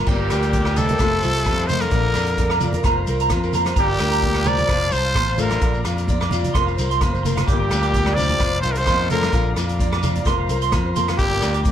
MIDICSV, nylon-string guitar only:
0, 0, Header, 1, 3, 480
1, 0, Start_track
1, 0, Tempo, 463320
1, 78, Time_signature, 4, 2, 24, 8
1, 12140, End_track
2, 0, Start_track
2, 0, Title_t, "Nylon-string guitar"
2, 0, Program_c, 0, 24
2, 0, Note_on_c, 0, 58, 57
2, 83, Note_on_c, 0, 43, 75
2, 91, Note_on_c, 0, 62, 58
2, 324, Note_off_c, 0, 62, 0
2, 576, Note_on_c, 0, 50, 59
2, 801, Note_off_c, 0, 50, 0
2, 805, Note_on_c, 0, 51, 63
2, 1037, Note_off_c, 0, 43, 0
2, 1040, Note_off_c, 0, 51, 0
2, 1045, Note_on_c, 0, 53, 65
2, 1051, Note_on_c, 0, 57, 59
2, 1055, Note_on_c, 0, 65, 59
2, 1275, Note_off_c, 0, 65, 0
2, 1288, Note_on_c, 0, 65, 56
2, 1514, Note_off_c, 0, 57, 0
2, 1518, Note_on_c, 0, 55, 62
2, 1754, Note_off_c, 0, 55, 0
2, 1758, Note_on_c, 0, 57, 59
2, 1970, Note_off_c, 0, 53, 0
2, 1972, Note_off_c, 0, 65, 0
2, 1992, Note_off_c, 0, 58, 0
2, 1995, Note_off_c, 0, 57, 0
2, 1999, Note_on_c, 0, 46, 70
2, 2009, Note_on_c, 0, 65, 58
2, 2240, Note_off_c, 0, 65, 0
2, 2486, Note_on_c, 0, 62, 57
2, 2717, Note_on_c, 0, 53, 60
2, 2729, Note_on_c, 0, 65, 58
2, 2926, Note_off_c, 0, 46, 0
2, 2930, Note_off_c, 0, 62, 0
2, 2932, Note_off_c, 0, 65, 0
2, 2943, Note_off_c, 0, 53, 0
2, 2955, Note_on_c, 0, 53, 68
2, 2962, Note_on_c, 0, 70, 69
2, 3183, Note_off_c, 0, 70, 0
2, 3196, Note_on_c, 0, 70, 64
2, 3439, Note_on_c, 0, 65, 60
2, 3667, Note_off_c, 0, 70, 0
2, 3674, Note_on_c, 0, 58, 66
2, 3682, Note_on_c, 0, 70, 67
2, 3886, Note_off_c, 0, 65, 0
2, 3886, Note_off_c, 0, 70, 0
2, 3910, Note_off_c, 0, 53, 0
2, 3928, Note_on_c, 0, 43, 76
2, 3932, Note_on_c, 0, 62, 66
2, 4148, Note_off_c, 0, 62, 0
2, 4160, Note_on_c, 0, 62, 58
2, 4388, Note_off_c, 0, 58, 0
2, 4401, Note_on_c, 0, 58, 55
2, 4628, Note_on_c, 0, 55, 67
2, 4633, Note_off_c, 0, 62, 0
2, 4841, Note_off_c, 0, 55, 0
2, 4873, Note_off_c, 0, 58, 0
2, 4877, Note_off_c, 0, 43, 0
2, 4877, Note_on_c, 0, 53, 73
2, 4885, Note_on_c, 0, 72, 68
2, 5112, Note_on_c, 0, 65, 57
2, 5339, Note_off_c, 0, 65, 0
2, 5352, Note_on_c, 0, 65, 60
2, 5578, Note_off_c, 0, 65, 0
2, 5583, Note_on_c, 0, 57, 63
2, 5591, Note_on_c, 0, 65, 60
2, 5798, Note_off_c, 0, 57, 0
2, 5802, Note_off_c, 0, 65, 0
2, 5805, Note_off_c, 0, 53, 0
2, 5809, Note_off_c, 0, 72, 0
2, 5817, Note_on_c, 0, 46, 68
2, 5828, Note_on_c, 0, 65, 59
2, 6065, Note_off_c, 0, 65, 0
2, 6077, Note_on_c, 0, 65, 59
2, 6319, Note_on_c, 0, 62, 57
2, 6547, Note_off_c, 0, 65, 0
2, 6550, Note_on_c, 0, 53, 64
2, 6559, Note_on_c, 0, 65, 56
2, 6755, Note_off_c, 0, 46, 0
2, 6766, Note_off_c, 0, 62, 0
2, 6766, Note_off_c, 0, 65, 0
2, 6784, Note_off_c, 0, 53, 0
2, 6796, Note_on_c, 0, 53, 69
2, 6801, Note_on_c, 0, 70, 68
2, 7034, Note_off_c, 0, 70, 0
2, 7049, Note_on_c, 0, 70, 69
2, 7294, Note_on_c, 0, 65, 58
2, 7509, Note_on_c, 0, 58, 55
2, 7510, Note_off_c, 0, 70, 0
2, 7523, Note_on_c, 0, 70, 62
2, 7728, Note_off_c, 0, 70, 0
2, 7734, Note_off_c, 0, 65, 0
2, 7749, Note_off_c, 0, 58, 0
2, 7752, Note_off_c, 0, 53, 0
2, 7759, Note_on_c, 0, 43, 74
2, 7775, Note_on_c, 0, 55, 59
2, 7780, Note_on_c, 0, 58, 65
2, 7787, Note_on_c, 0, 62, 58
2, 8007, Note_off_c, 0, 62, 0
2, 8025, Note_on_c, 0, 62, 61
2, 8232, Note_off_c, 0, 58, 0
2, 8245, Note_on_c, 0, 58, 54
2, 8465, Note_off_c, 0, 55, 0
2, 8474, Note_off_c, 0, 62, 0
2, 8478, Note_on_c, 0, 55, 62
2, 8486, Note_on_c, 0, 62, 59
2, 8687, Note_off_c, 0, 55, 0
2, 8715, Note_off_c, 0, 43, 0
2, 8717, Note_off_c, 0, 58, 0
2, 8718, Note_off_c, 0, 62, 0
2, 8720, Note_on_c, 0, 53, 71
2, 8724, Note_on_c, 0, 72, 65
2, 8974, Note_on_c, 0, 65, 59
2, 9202, Note_off_c, 0, 65, 0
2, 9220, Note_on_c, 0, 65, 58
2, 9432, Note_off_c, 0, 65, 0
2, 9439, Note_on_c, 0, 57, 64
2, 9445, Note_on_c, 0, 65, 55
2, 9648, Note_off_c, 0, 57, 0
2, 9649, Note_off_c, 0, 53, 0
2, 9651, Note_off_c, 0, 65, 0
2, 9651, Note_off_c, 0, 72, 0
2, 9662, Note_on_c, 0, 46, 71
2, 9674, Note_on_c, 0, 65, 61
2, 9911, Note_off_c, 0, 65, 0
2, 9923, Note_on_c, 0, 65, 61
2, 10167, Note_on_c, 0, 62, 52
2, 10395, Note_off_c, 0, 65, 0
2, 10403, Note_on_c, 0, 53, 63
2, 10407, Note_on_c, 0, 65, 57
2, 10601, Note_off_c, 0, 46, 0
2, 10613, Note_off_c, 0, 62, 0
2, 10613, Note_off_c, 0, 65, 0
2, 10625, Note_off_c, 0, 53, 0
2, 10637, Note_on_c, 0, 53, 73
2, 10637, Note_on_c, 0, 70, 71
2, 10873, Note_off_c, 0, 70, 0
2, 10885, Note_on_c, 0, 70, 66
2, 11113, Note_on_c, 0, 65, 57
2, 11360, Note_off_c, 0, 70, 0
2, 11362, Note_on_c, 0, 58, 61
2, 11372, Note_on_c, 0, 70, 66
2, 11567, Note_off_c, 0, 65, 0
2, 11576, Note_off_c, 0, 70, 0
2, 11596, Note_off_c, 0, 53, 0
2, 11597, Note_on_c, 0, 43, 70
2, 11606, Note_on_c, 0, 62, 62
2, 11824, Note_off_c, 0, 62, 0
2, 11837, Note_on_c, 0, 62, 62
2, 12079, Note_off_c, 0, 58, 0
2, 12089, Note_on_c, 0, 58, 58
2, 12140, Note_off_c, 0, 43, 0
2, 12140, Note_off_c, 0, 58, 0
2, 12140, Note_off_c, 0, 62, 0
2, 12140, End_track
3, 0, Start_track
3, 0, Title_t, "Muted nylon-string guitar strokes"
3, 336, Note_on_c, 9, 29, 54
3, 440, Note_off_c, 9, 29, 0
3, 12140, End_track
0, 0, End_of_file